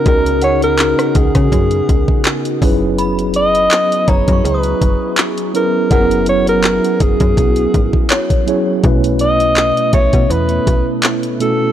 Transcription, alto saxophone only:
X:1
M:4/4
L:1/16
Q:"Swing 16ths" 1/4=82
K:Gblyd
V:1 name="Alto saxophone"
B2 d B3 A8 z2 | z2 e4 d2 _c4 z2 B2 | B2 d B3 A8 z2 | z2 e4 ^c2 =B4 z2 =A2 |]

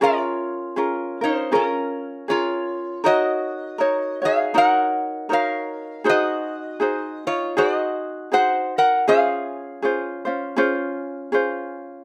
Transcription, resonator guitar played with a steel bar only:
X:1
M:4/4
L:1/8
Q:"Swing" 1/4=80
K:Db
V:1 name="Resonator guitar played with a steel bar"
[Fd]3 [Ec] [DB]2 [Fd]2 | [Ge]3 [Af] [Bg]2 [Bf]2 | [Ge]3 [Fd] [Ge]2 [cg] [Bg] | [Af]6 z2 |]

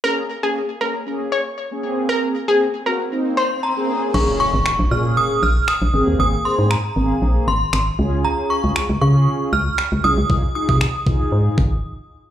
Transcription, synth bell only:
X:1
M:4/4
L:1/16
Q:1/4=117
K:Bbm
V:1 name="Synth bell"
z16 | z8 z2 c'2 b4 | d'2 d'4 f'2 e'2 f'2 e'4 | e'2 c'2 b6 c'4 z2 |
b2 d'4 d'4 f'4 e'2- | e'2 e' e'8 z4 z |]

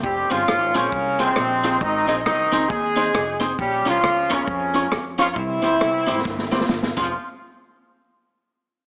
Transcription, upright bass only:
X:1
M:4/4
L:1/8
Q:"Swing" 1/4=135
K:Fm
V:1 name="Upright bass" clef=bass
F,,, G,,, A,,, B,,, C,,2 B,,,2 | A,,, B,,, C,, D,, E,,2 F,,,2 | B,,, C,, D,, =E,, F,,2 F,,2 | C,, D,, C,, A,,, G,,,2 G,,, F,,, |
z8 |]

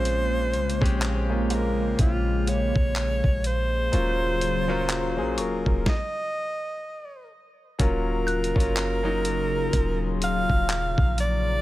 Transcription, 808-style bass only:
X:1
M:4/4
L:1/16
Q:"Swing 16ths" 1/4=62
K:Ebdor
V:1 name="808-style bass" clef=bass
B,,,2 C,, B,,,4- B,,, B,,,3 B,,,2 B,,,3 | E,,,4- E,,, B,,, E,,, E,,, z8 | E,,,3 G,,,4- G,,, E,,,3 E,,,2 B,,,3 |]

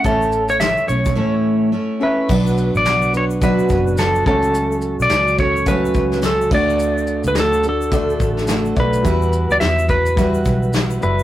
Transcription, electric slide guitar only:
X:1
M:4/4
L:1/16
Q:"Swing 16ths" 1/4=107
K:D
V:1 name="Electric slide guitar"
A3 c e2 c6 z2 B2- | B3 d3 c2 B4 A2 A2- | A3 d3 c2 B4 A2 d2- | d3 B A2 A8 B2- |
B3 d e2 B8 B2 |]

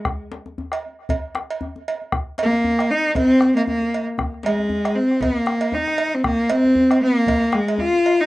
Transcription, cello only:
X:1
M:4/4
L:1/16
Q:"Swing 16ths" 1/4=116
K:Bbdor
V:1 name="Cello"
z16 | z2 B,4 E2 C3 B, B,3 z | z2 A,4 C2 B,4 E3 C | B,2 C4 B,4 A,2 F3 E |]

